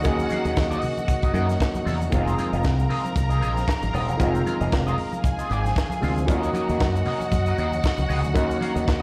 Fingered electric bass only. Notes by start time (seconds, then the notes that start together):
0.05 D#2
0.45 D#2
0.57 D#2
1.33 F#2
1.86 E2
2.13 F1
2.53 F1
2.65 C2
3.16 C2
3.42 A#1
3.83 G#1
3.94 D#1
4.09 E1
4.20 F1
4.61 F1
4.72 F1
5.50 G#1
6.03 D2
6.29 D#2
6.69 D#2
6.81 F#2
7.32 F#2
7.58 D#2
7.98 C#2
8.10 C#2
8.24 D2
8.35 D#2
8.76 D#2
8.88 D#2